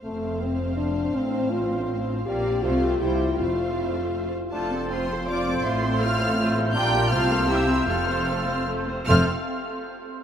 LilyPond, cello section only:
\new Staff \with { instrumentName = "Cello section" } { \clef bass \time 3/4 \key f \major \tempo 4 = 160 f,2. | a,2. | bes,4 c4 c4 | f,2~ f,8 r8 |
f,2. | a,2. | bes,4 c2 | f,2~ f,8 r8 |
f,8 r2 r8 | }